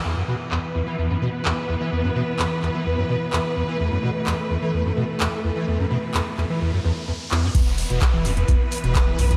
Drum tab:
CC |x-------------------------------|--------------------------------|--------------------------------|--------------------------------|
HH |--------------------------------|--------------------------------|--------------------------------|--------------------------------|
SH |--------------------------------|--------------------------------|--------------------------------|--------------------------------|
CP |--------x---------------x-------|--------x---x-----------x-------|--------x---------------x-------|--------x---x---------------x---|
SD |--------------------------------|--------------------------------|--------------------------------|--------------------------------|
BD |--------------------------------|--------------------------------|--------------------------------|--------------------------------|

CC |x-------------------------------|
HH |x---o-x-x---o-x-x---oxx-x---o-x-|
SH |x---x---x---x---x---x---x---x---|
CP |--------x---------------x-------|
SD |--o-----o-------------o-o-------|
BD |o-------o-------o-------o-------|